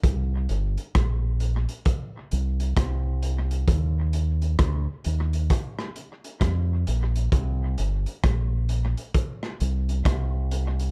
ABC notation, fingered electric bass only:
X:1
M:4/4
L:1/16
Q:"Swing 16ths" 1/4=66
K:Bblyd
V:1 name="Fingered electric bass" clef=bass
C,,2 G,,, z B,,,3 z3 C,,2 C,,4 | _E,,4 D,, z E,,2 z4 F,,2 B,,,2 | C,,2 G,,, z B,,,3 z3 C,,2 C,,4 |]